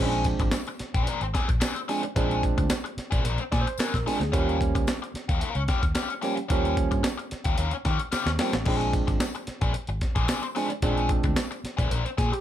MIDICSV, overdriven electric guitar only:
0, 0, Header, 1, 3, 480
1, 0, Start_track
1, 0, Tempo, 542005
1, 1916, Time_signature, 4, 2, 24, 8
1, 10988, End_track
2, 0, Start_track
2, 0, Title_t, "Overdriven electric guitar"
2, 0, Program_c, 0, 29
2, 0, Note_on_c, 0, 60, 90
2, 0, Note_on_c, 0, 62, 89
2, 0, Note_on_c, 0, 68, 102
2, 212, Note_off_c, 0, 60, 0
2, 213, Note_off_c, 0, 62, 0
2, 216, Note_off_c, 0, 68, 0
2, 836, Note_on_c, 0, 68, 74
2, 843, Note_on_c, 0, 62, 66
2, 851, Note_on_c, 0, 60, 64
2, 942, Note_off_c, 0, 60, 0
2, 951, Note_off_c, 0, 62, 0
2, 953, Note_on_c, 0, 60, 84
2, 961, Note_off_c, 0, 68, 0
2, 962, Note_on_c, 0, 62, 85
2, 965, Note_on_c, 0, 70, 84
2, 1077, Note_off_c, 0, 70, 0
2, 1079, Note_off_c, 0, 62, 0
2, 1111, Note_off_c, 0, 60, 0
2, 1184, Note_on_c, 0, 60, 61
2, 1189, Note_on_c, 0, 62, 72
2, 1196, Note_on_c, 0, 68, 71
2, 1313, Note_off_c, 0, 68, 0
2, 1315, Note_off_c, 0, 60, 0
2, 1315, Note_off_c, 0, 62, 0
2, 1419, Note_on_c, 0, 60, 85
2, 1424, Note_on_c, 0, 62, 96
2, 1425, Note_on_c, 0, 68, 89
2, 1540, Note_off_c, 0, 68, 0
2, 1551, Note_off_c, 0, 62, 0
2, 1584, Note_off_c, 0, 60, 0
2, 1666, Note_on_c, 0, 60, 73
2, 1675, Note_on_c, 0, 62, 78
2, 1677, Note_on_c, 0, 68, 82
2, 1791, Note_off_c, 0, 68, 0
2, 1797, Note_off_c, 0, 60, 0
2, 1799, Note_off_c, 0, 62, 0
2, 1912, Note_on_c, 0, 60, 98
2, 1917, Note_on_c, 0, 62, 91
2, 1924, Note_on_c, 0, 68, 102
2, 2137, Note_off_c, 0, 60, 0
2, 2139, Note_off_c, 0, 62, 0
2, 2143, Note_off_c, 0, 68, 0
2, 2751, Note_on_c, 0, 68, 82
2, 2760, Note_on_c, 0, 62, 79
2, 2766, Note_on_c, 0, 60, 68
2, 2864, Note_off_c, 0, 60, 0
2, 2867, Note_off_c, 0, 62, 0
2, 2874, Note_on_c, 0, 60, 89
2, 2877, Note_off_c, 0, 68, 0
2, 2877, Note_on_c, 0, 62, 91
2, 2881, Note_on_c, 0, 70, 86
2, 3009, Note_off_c, 0, 62, 0
2, 3010, Note_off_c, 0, 70, 0
2, 3032, Note_off_c, 0, 60, 0
2, 3115, Note_on_c, 0, 60, 61
2, 3121, Note_on_c, 0, 62, 70
2, 3128, Note_on_c, 0, 68, 79
2, 3237, Note_off_c, 0, 68, 0
2, 3242, Note_off_c, 0, 60, 0
2, 3245, Note_off_c, 0, 62, 0
2, 3358, Note_on_c, 0, 60, 78
2, 3360, Note_on_c, 0, 62, 84
2, 3367, Note_on_c, 0, 68, 109
2, 3479, Note_off_c, 0, 68, 0
2, 3488, Note_off_c, 0, 62, 0
2, 3514, Note_off_c, 0, 60, 0
2, 3597, Note_on_c, 0, 60, 77
2, 3601, Note_on_c, 0, 62, 76
2, 3607, Note_on_c, 0, 68, 76
2, 3713, Note_off_c, 0, 68, 0
2, 3719, Note_off_c, 0, 62, 0
2, 3723, Note_off_c, 0, 60, 0
2, 3826, Note_on_c, 0, 61, 86
2, 3835, Note_on_c, 0, 65, 99
2, 3839, Note_on_c, 0, 67, 98
2, 4054, Note_off_c, 0, 61, 0
2, 4058, Note_off_c, 0, 65, 0
2, 4060, Note_off_c, 0, 67, 0
2, 4682, Note_on_c, 0, 67, 72
2, 4684, Note_on_c, 0, 65, 80
2, 4693, Note_on_c, 0, 61, 64
2, 4780, Note_off_c, 0, 61, 0
2, 4783, Note_off_c, 0, 65, 0
2, 4790, Note_on_c, 0, 61, 94
2, 4793, Note_on_c, 0, 65, 106
2, 4796, Note_off_c, 0, 67, 0
2, 4800, Note_on_c, 0, 70, 107
2, 4914, Note_off_c, 0, 70, 0
2, 4916, Note_off_c, 0, 65, 0
2, 4975, Note_off_c, 0, 61, 0
2, 5034, Note_on_c, 0, 61, 70
2, 5042, Note_on_c, 0, 65, 68
2, 5045, Note_on_c, 0, 67, 77
2, 5148, Note_off_c, 0, 67, 0
2, 5154, Note_off_c, 0, 65, 0
2, 5161, Note_off_c, 0, 61, 0
2, 5266, Note_on_c, 0, 61, 71
2, 5270, Note_on_c, 0, 65, 81
2, 5276, Note_on_c, 0, 67, 88
2, 5389, Note_off_c, 0, 67, 0
2, 5396, Note_off_c, 0, 65, 0
2, 5428, Note_off_c, 0, 61, 0
2, 5503, Note_on_c, 0, 61, 66
2, 5506, Note_on_c, 0, 65, 64
2, 5514, Note_on_c, 0, 67, 70
2, 5624, Note_off_c, 0, 67, 0
2, 5632, Note_off_c, 0, 65, 0
2, 5635, Note_off_c, 0, 61, 0
2, 5742, Note_on_c, 0, 61, 83
2, 5746, Note_on_c, 0, 65, 84
2, 5747, Note_on_c, 0, 67, 81
2, 5971, Note_off_c, 0, 61, 0
2, 5973, Note_off_c, 0, 65, 0
2, 5974, Note_off_c, 0, 67, 0
2, 6595, Note_on_c, 0, 67, 86
2, 6603, Note_on_c, 0, 65, 68
2, 6608, Note_on_c, 0, 61, 64
2, 6695, Note_off_c, 0, 61, 0
2, 6701, Note_off_c, 0, 65, 0
2, 6706, Note_on_c, 0, 61, 90
2, 6712, Note_on_c, 0, 65, 94
2, 6715, Note_off_c, 0, 67, 0
2, 6719, Note_on_c, 0, 70, 104
2, 6843, Note_off_c, 0, 65, 0
2, 6845, Note_off_c, 0, 70, 0
2, 6867, Note_off_c, 0, 61, 0
2, 6952, Note_on_c, 0, 61, 60
2, 6958, Note_on_c, 0, 65, 69
2, 6963, Note_on_c, 0, 67, 68
2, 7069, Note_off_c, 0, 67, 0
2, 7075, Note_off_c, 0, 65, 0
2, 7079, Note_off_c, 0, 61, 0
2, 7187, Note_on_c, 0, 61, 80
2, 7193, Note_on_c, 0, 65, 78
2, 7198, Note_on_c, 0, 67, 88
2, 7316, Note_off_c, 0, 67, 0
2, 7325, Note_off_c, 0, 65, 0
2, 7348, Note_off_c, 0, 61, 0
2, 7436, Note_on_c, 0, 61, 69
2, 7438, Note_on_c, 0, 65, 75
2, 7443, Note_on_c, 0, 67, 71
2, 7554, Note_off_c, 0, 67, 0
2, 7561, Note_off_c, 0, 61, 0
2, 7562, Note_off_c, 0, 65, 0
2, 7664, Note_on_c, 0, 59, 85
2, 7668, Note_on_c, 0, 61, 73
2, 7674, Note_on_c, 0, 67, 95
2, 7761, Note_off_c, 0, 59, 0
2, 7761, Note_on_c, 0, 60, 85
2, 7765, Note_off_c, 0, 61, 0
2, 7765, Note_on_c, 0, 62, 73
2, 7772, Note_off_c, 0, 67, 0
2, 7772, Note_on_c, 0, 68, 95
2, 7891, Note_off_c, 0, 60, 0
2, 7893, Note_off_c, 0, 62, 0
2, 7896, Note_off_c, 0, 68, 0
2, 8514, Note_on_c, 0, 68, 83
2, 8522, Note_on_c, 0, 62, 76
2, 8527, Note_on_c, 0, 60, 68
2, 8615, Note_off_c, 0, 60, 0
2, 8618, Note_off_c, 0, 62, 0
2, 8620, Note_off_c, 0, 68, 0
2, 8992, Note_on_c, 0, 68, 77
2, 8998, Note_on_c, 0, 62, 79
2, 9000, Note_on_c, 0, 60, 77
2, 9087, Note_off_c, 0, 60, 0
2, 9096, Note_off_c, 0, 62, 0
2, 9098, Note_off_c, 0, 68, 0
2, 9098, Note_on_c, 0, 60, 74
2, 9107, Note_on_c, 0, 62, 91
2, 9109, Note_on_c, 0, 68, 80
2, 9228, Note_off_c, 0, 68, 0
2, 9238, Note_off_c, 0, 62, 0
2, 9262, Note_off_c, 0, 60, 0
2, 9342, Note_on_c, 0, 60, 61
2, 9350, Note_on_c, 0, 62, 72
2, 9357, Note_on_c, 0, 68, 75
2, 9471, Note_off_c, 0, 68, 0
2, 9472, Note_off_c, 0, 60, 0
2, 9477, Note_off_c, 0, 62, 0
2, 9595, Note_on_c, 0, 60, 82
2, 9599, Note_on_c, 0, 62, 88
2, 9606, Note_on_c, 0, 68, 100
2, 9815, Note_off_c, 0, 60, 0
2, 9817, Note_off_c, 0, 62, 0
2, 9821, Note_off_c, 0, 68, 0
2, 10423, Note_on_c, 0, 68, 64
2, 10431, Note_on_c, 0, 62, 73
2, 10437, Note_on_c, 0, 60, 61
2, 10536, Note_off_c, 0, 60, 0
2, 10540, Note_off_c, 0, 62, 0
2, 10546, Note_on_c, 0, 60, 88
2, 10550, Note_off_c, 0, 68, 0
2, 10550, Note_on_c, 0, 62, 102
2, 10553, Note_on_c, 0, 70, 99
2, 10667, Note_off_c, 0, 70, 0
2, 10670, Note_off_c, 0, 62, 0
2, 10704, Note_off_c, 0, 60, 0
2, 10782, Note_on_c, 0, 60, 67
2, 10789, Note_on_c, 0, 62, 64
2, 10790, Note_on_c, 0, 68, 67
2, 10907, Note_off_c, 0, 68, 0
2, 10911, Note_off_c, 0, 60, 0
2, 10914, Note_off_c, 0, 62, 0
2, 10988, End_track
3, 0, Start_track
3, 0, Title_t, "Muted overdriven electric guitar strokes"
3, 357, Note_on_c, 9, 29, 53
3, 445, Note_off_c, 9, 29, 0
3, 467, Note_on_c, 9, 29, 47
3, 555, Note_off_c, 9, 29, 0
3, 599, Note_on_c, 9, 29, 46
3, 687, Note_off_c, 9, 29, 0
3, 1080, Note_on_c, 9, 29, 51
3, 1169, Note_off_c, 9, 29, 0
3, 1323, Note_on_c, 9, 29, 53
3, 1412, Note_off_c, 9, 29, 0
3, 1551, Note_on_c, 9, 29, 46
3, 1639, Note_off_c, 9, 29, 0
3, 1802, Note_on_c, 9, 29, 46
3, 1890, Note_off_c, 9, 29, 0
3, 2281, Note_on_c, 9, 29, 57
3, 2370, Note_off_c, 9, 29, 0
3, 2393, Note_on_c, 9, 29, 43
3, 2482, Note_off_c, 9, 29, 0
3, 2515, Note_on_c, 9, 29, 52
3, 2603, Note_off_c, 9, 29, 0
3, 3014, Note_on_c, 9, 29, 55
3, 3102, Note_off_c, 9, 29, 0
3, 3248, Note_on_c, 9, 29, 64
3, 3336, Note_off_c, 9, 29, 0
3, 3490, Note_on_c, 9, 29, 55
3, 3578, Note_off_c, 9, 29, 0
3, 3724, Note_on_c, 9, 29, 42
3, 3812, Note_off_c, 9, 29, 0
3, 4206, Note_on_c, 9, 29, 61
3, 4295, Note_off_c, 9, 29, 0
3, 4320, Note_on_c, 9, 29, 40
3, 4408, Note_off_c, 9, 29, 0
3, 4446, Note_on_c, 9, 29, 58
3, 4535, Note_off_c, 9, 29, 0
3, 4917, Note_on_c, 9, 29, 51
3, 5006, Note_off_c, 9, 29, 0
3, 5159, Note_on_c, 9, 29, 47
3, 5247, Note_off_c, 9, 29, 0
3, 5400, Note_on_c, 9, 29, 43
3, 5489, Note_off_c, 9, 29, 0
3, 5635, Note_on_c, 9, 29, 46
3, 5724, Note_off_c, 9, 29, 0
3, 6119, Note_on_c, 9, 29, 42
3, 6207, Note_off_c, 9, 29, 0
3, 6226, Note_on_c, 9, 29, 44
3, 6315, Note_off_c, 9, 29, 0
3, 6354, Note_on_c, 9, 29, 49
3, 6442, Note_off_c, 9, 29, 0
3, 6848, Note_on_c, 9, 29, 48
3, 6937, Note_off_c, 9, 29, 0
3, 7080, Note_on_c, 9, 29, 47
3, 7168, Note_off_c, 9, 29, 0
3, 7327, Note_on_c, 9, 29, 54
3, 7415, Note_off_c, 9, 29, 0
3, 7565, Note_on_c, 9, 29, 41
3, 7653, Note_off_c, 9, 29, 0
3, 8035, Note_on_c, 9, 29, 60
3, 8124, Note_off_c, 9, 29, 0
3, 8149, Note_on_c, 9, 29, 48
3, 8237, Note_off_c, 9, 29, 0
3, 8278, Note_on_c, 9, 29, 43
3, 8366, Note_off_c, 9, 29, 0
3, 8625, Note_on_c, 9, 29, 37
3, 8714, Note_off_c, 9, 29, 0
3, 8756, Note_on_c, 9, 29, 46
3, 8845, Note_off_c, 9, 29, 0
3, 9239, Note_on_c, 9, 29, 41
3, 9327, Note_off_c, 9, 29, 0
3, 9482, Note_on_c, 9, 29, 50
3, 9571, Note_off_c, 9, 29, 0
3, 9954, Note_on_c, 9, 29, 48
3, 10043, Note_off_c, 9, 29, 0
3, 10062, Note_on_c, 9, 29, 47
3, 10151, Note_off_c, 9, 29, 0
3, 10191, Note_on_c, 9, 29, 47
3, 10280, Note_off_c, 9, 29, 0
3, 10670, Note_on_c, 9, 29, 57
3, 10759, Note_off_c, 9, 29, 0
3, 10918, Note_on_c, 9, 29, 49
3, 10988, Note_off_c, 9, 29, 0
3, 10988, End_track
0, 0, End_of_file